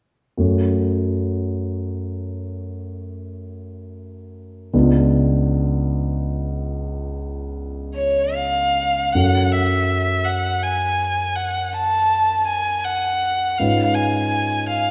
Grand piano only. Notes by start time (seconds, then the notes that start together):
0.37 F#2 A3 C#4 F#4
4.73 C#2 B3 D4 F4
9.15 F#2 C#4 F#4 A4
13.59 G#2 C#4 F4 B4